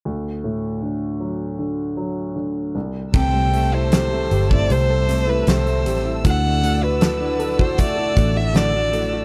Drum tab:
CC |----------------|x---------------|----------------|
HH |----------------|--x-x-x-x-x-xxx-|x-x-x-x-x-x-x-x-|
SD |----------------|----o-------o---|----o-------o---|
BD |----------------|o------o--------|o------oo-o-----|